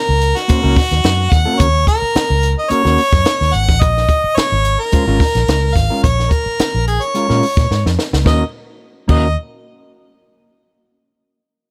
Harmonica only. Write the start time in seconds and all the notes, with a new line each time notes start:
Already playing: A#4
0.37 F#4
1.32 F#5
1.60 C#5
1.88 A#4
2.59 D#5
2.71 C#5
3.54 F#5
3.81 D#5
4.36 C#5
4.80 A#4
5.75 F5
6.03 C#5
6.31 A#4
6.88 G#4
7.03 C#5
8.27 D#5
9.10 D#5